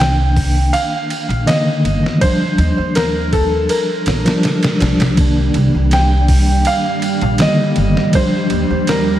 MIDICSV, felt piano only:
0, 0, Header, 1, 2, 480
1, 0, Start_track
1, 0, Key_signature, -3, "minor"
1, 0, Tempo, 740741
1, 1432, Time_signature, 4, 2, 24, 8
1, 5958, End_track
2, 0, Start_track
2, 0, Title_t, "Felt piano"
2, 0, Program_c, 0, 0
2, 0, Note_on_c, 0, 79, 104
2, 446, Note_off_c, 0, 79, 0
2, 473, Note_on_c, 0, 77, 104
2, 954, Note_on_c, 0, 75, 97
2, 967, Note_off_c, 0, 77, 0
2, 1407, Note_off_c, 0, 75, 0
2, 1434, Note_on_c, 0, 72, 96
2, 1887, Note_off_c, 0, 72, 0
2, 1915, Note_on_c, 0, 70, 89
2, 2137, Note_off_c, 0, 70, 0
2, 2157, Note_on_c, 0, 69, 81
2, 2397, Note_on_c, 0, 70, 78
2, 2402, Note_off_c, 0, 69, 0
2, 3088, Note_off_c, 0, 70, 0
2, 3843, Note_on_c, 0, 79, 107
2, 4321, Note_on_c, 0, 77, 102
2, 4332, Note_off_c, 0, 79, 0
2, 4771, Note_off_c, 0, 77, 0
2, 4806, Note_on_c, 0, 75, 96
2, 5253, Note_off_c, 0, 75, 0
2, 5282, Note_on_c, 0, 72, 89
2, 5762, Note_on_c, 0, 70, 87
2, 5772, Note_off_c, 0, 72, 0
2, 5958, Note_off_c, 0, 70, 0
2, 5958, End_track
0, 0, End_of_file